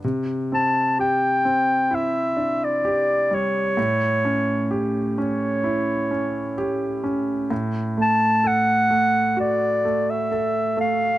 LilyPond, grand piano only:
\new Staff \with { instrumentName = "Grand piano" } { \time 4/4 \key c \major \tempo 4 = 64 c8 c'8 g'8 c'8 e'8 d'8 g'8 g8 | a,8 cis'8 g'8 cis'8 e'8 cis'8 g'8 cis'8 | a,8 a8 a'8 a8 fis'8 a8 a'8 a8 | }